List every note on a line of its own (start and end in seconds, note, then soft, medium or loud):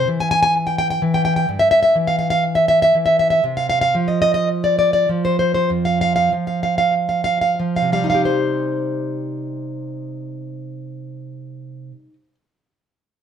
0.08 1.01 E3 soft
0.20 0.30 G#5 medium
0.31 0.41 G#5 medium
0.43 0.54 G#5 medium
0.67 0.77 G5 medium
0.78 0.89 G5 medium
0.90 1.01 G5 medium
1.02 1.48 E3 soft
1.14 1.24 G5 medium
1.25 1.35 G5 medium
1.36 1.48 G5 medium
1.49 1.94 G2 soft
1.59 1.70 E5 medium
1.71 1.81 E5 medium
1.83 1.95 E5 medium
1.95 2.94 E3 soft
2.07 2.17 F5 medium
2.19 2.29 F5 medium
2.30 2.43 F5 medium
2.55 2.67 E5 medium
2.68 2.81 E5 medium
2.82 2.94 E5 medium
2.95 3.41 E3 soft
3.06 3.18 E5 medium
3.19 3.29 E5 medium
3.30 3.43 E5 medium
3.44 3.93 C3 medium
3.57 3.68 F5 medium
3.70 3.80 F5 medium
3.81 3.95 F5 medium
3.95 5.08 F3 soft
4.08 4.21 D#5 medium
4.22 4.33 D#5 medium
4.34 4.48 D#5 medium
4.64 4.77 D5 medium
4.79 4.92 D5 soft
4.93 5.08 D5 medium
5.09 6.31 F3 soft
5.25 5.38 C5 medium
5.39 5.53 C5 soft
5.54 5.70 C5 soft
5.70 6.29 F2 soft
5.85 6.00 F5 medium
6.01 6.15 F5 medium
6.16 6.31 F5 medium
6.32 7.58 F3 soft
6.47 6.62 F5 soft
6.63 6.77 F5 medium
6.78 6.94 F5 medium
7.09 7.23 F5 soft
7.24 7.40 F5 medium
7.41 7.59 F5 soft
7.60 8.22 F3 soft
7.76 7.92 F5 soft
7.82 11.91 C3 soft
7.92 12.02 G3 soft
7.92 8.09 F5 soft
8.04 12.13 D#4 soft
8.10 8.25 F5 soft
8.15 12.24 G4 soft
8.25 12.35 C5 soft